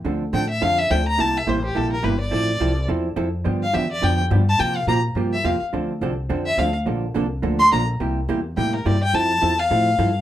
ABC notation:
X:1
M:4/4
L:1/16
Q:"Swing" 1/4=211
K:F
V:1 name="Fiddle"
z4 g2 e2 f2 e2 g2 b2 | a2 e2 c2 G2 A2 B2 =B2 d2- | d8 z8 | z2 f2 e2 d2 g2 z4 a2 |
g2 f2 b2 z4 e2 f2 z2 | z8 z2 e2 f2 z2 | z8 z2 c'2 b2 z2 | z8 g2 B2 d2 g2 |
a6 f8- f z |]
V:2 name="Hollow-body jazz guitar"
[D,F,CDA]2 z2 [D,F,CDA]2 z2 [D,F,CDA]2 z2 [D,F,CDA]2 z2 | [C,G,B,EG]2 z2 [C,G,B,EG]2 z2 [C,G,B,EG]2 z2 [C,G,B,EG]2 z2 | [F,CEA]2 z2 [F,CEA]2 z2 [F,CEA]2 z2 [F,CEA]2 z2 | [D,F,=B,DG]2 z2 [D,F,B,DG]2 z2 [D,F,B,DG]2 z2 [D,F,B,DG]2 z2 |
[C,F,B,FG]2 z2 [C,F,B,FG]2 z2 [C,F,B,FG]2 z2 [C,F,B,FG]2 z2 | [D,F,CDA]2 z2 [D,F,CDA]2 z2 [D,F,CDA]2 z2 [D,F,CDA]2 z2 | [D,F,B,DA]2 z2 [D,F,B,DA]2 z2 [D,F,B,DA]2 z2 [D,F,B,DA]2 z2 | [C,G,B,EG]2 z2 [C,G,B,EG]2 z2 [C,G,B,EG]2 z2 [C,G,B,EG]2 z2 |
[F,CEA]2 z2 [F,CEA]2 z2 [F,CEA]2 z2 [F,CEA]2 z2 |]
V:3 name="Upright bass" clef=bass
D,,4 A,,4 F,,4 D,,4 | C,,4 A,,,4 B,,,4 G,,,4 | A,,,4 C,,4 E,,4 F,,4 | G,,4 E,,4 F,,4 G,,4 |
C,4 B,,4 G,,4 E,,2 z2 | D,,4 C,,4 F,,4 D,,4 | B,,,4 C,,4 D,,4 B,,,4 | C,,4 E,,4 A,,4 G,,4 |
F,,4 E,,4 A,,4 G,,4 |]